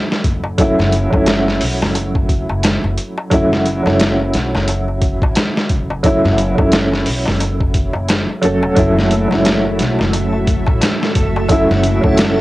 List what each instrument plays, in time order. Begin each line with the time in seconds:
Already playing: upright piano F#3 A3 C#4 E4
0.11 snare, darbuka tek
0.24 upright bass F#1, kick, closed hi-hat
0.44 darbuka tek
0.58 upright piano F#3 A3 C#4 E4, kick, closed hi-hat, darbuka tek
0.79 upright bass F#1, snare, darbuka tek
0.92 closed hi-hat
1.10 upright bass F#1, upright piano F#3 A3, kick, darbuka tek
1.15 upright piano C#4 E4
1.26 snare, closed hi-hat, darbuka tek
1.48 snare, darbuka tek
1.61 upright bass B1, open hi-hat
1.82 upright bass F#1, snare, darbuka tek
1.95 closed hi-hat, darbuka tek
2.15 kick, darbuka tek
2.29 kick, closed hi-hat
2.49 upright bass F#1, darbuka tek
2.63 snare, closed hi-hat, darbuka tek
2.84 upright bass F#1, darbuka tek
2.98 closed hi-hat
3.18 darbuka tek
3.30 upright bass F#1, upright piano F#3 A3 C#4 E4, kick, closed hi-hat, darbuka tek
3.52 snare, darbuka tek
3.66 closed hi-hat
3.83 upright bass F#1, upright piano F#3 A3, darbuka tek
3.87 upright piano C#4 E4, snare
4.00 snare, closed hi-hat, darbuka tek
4.20 darbuka tek
4.34 upright bass B1, snare, closed hi-hat
4.55 upright bass F#1, snare, darbuka tek
4.68 closed hi-hat, darbuka tek
4.88 darbuka tek
5.02 kick, closed hi-hat
5.22 upright bass A1, kick, darbuka tek
5.35 snare, closed hi-hat, darbuka tek
5.56 snare, darbuka tek
5.69 upright bass F#1, kick, closed hi-hat
5.90 darbuka tek
6.03 upright piano F#3 A3 C#4 E4, kick, closed hi-hat, darbuka tek
6.24 upright bass F#1, snare, darbuka tek
6.38 closed hi-hat
6.55 upright bass F#1, upright piano F#3 A3, kick, darbuka tek
6.60 upright piano C#4 E4
6.72 snare, closed hi-hat, darbuka tek
6.92 snare, darbuka tek
7.06 upright bass B1, open hi-hat
7.26 upright bass F#1, snare, darbuka tek
7.40 closed hi-hat, darbuka tek
7.60 kick, darbuka tek
7.74 kick, closed hi-hat
7.93 upright bass F#1, darbuka tek
8.08 snare, closed hi-hat, darbuka tek
8.29 darbuka tek
8.42 upright bass F#1, upright piano F#3 A3 C#4 A4, closed hi-hat
8.63 upright bass E1, darbuka tek
8.75 upright bass F#1, upright piano F#3 A3 C#4 E4, string machine A3 F#4 E5, synth texture A4, kick, closed hi-hat, darbuka tek
8.97 snare, darbuka tek
9.11 closed hi-hat
9.28 upright bass F#1, upright piano F#3 A3, darbuka tek
9.32 upright piano C#4 E4, snare
9.45 snare, closed hi-hat, darbuka tek
9.64 darbuka tek
9.79 upright bass B1, snare, closed hi-hat
9.99 upright bass F#1, snare, darbuka tek
10.13 closed hi-hat, darbuka tek
10.33 darbuka tek
10.47 kick, closed hi-hat
10.67 upright bass A1, kick, darbuka tek
10.81 snare, closed hi-hat, darbuka tek
11.01 snare, darbuka tek
11.15 upright bass F#1, kick, closed hi-hat
11.36 darbuka tek
11.48 upright piano F#3 A3 C#4 E4, kick, closed hi-hat, darbuka tek
11.69 upright bass F#1, snare, darbuka tek
11.84 closed hi-hat
12.01 upright bass F#1, upright piano F#3 A3, kick, darbuka tek
12.06 upright piano C#4 E4
12.17 snare, closed hi-hat, darbuka tek
12.37 darbuka tek